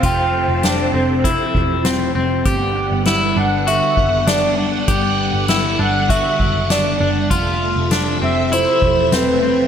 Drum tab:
HH |x-x-x-x-|x-x-x-x-|x-x-x-x-|x-x-x-x-|
SD |--o---o-|--o---o-|--o---o-|--o---o-|
BD |o---oo--|o----o--|o---oo--|o----o--|